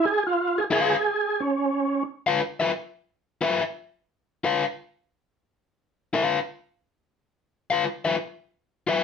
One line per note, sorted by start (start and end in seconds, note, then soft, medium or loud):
0.05 0.23 G#4 loud
0.27 0.60 F4 loud
0.58 0.64 G#4 loud
0.71 0.94 F4 medium
0.71 1.42 G#4 loud
0.71 0.94 B4 medium
0.71 0.94 F5 medium
1.40 2.03 C#4 medium
2.27 2.40 F4 medium
2.27 2.40 B4 medium
2.27 2.39 F5 medium
2.60 2.71 F4 medium
2.60 2.70 B4 medium
2.60 2.70 E5 medium
3.41 3.60 F4 medium
3.41 3.61 B4 medium
3.41 3.61 E5 medium
4.44 4.63 F4 medium
4.44 4.63 B4 medium
4.44 4.63 F5 medium
6.13 6.37 F4 medium
6.13 6.37 B4 medium
6.13 6.37 F5 medium
7.70 7.84 F4 medium
7.70 7.84 B4 medium
7.70 7.83 F5 medium
8.05 8.15 F4 soft
8.05 8.15 B4 medium
8.05 8.15 E5 medium
8.87 9.04 F4 medium
8.87 9.04 B4 medium
8.87 9.04 E5 medium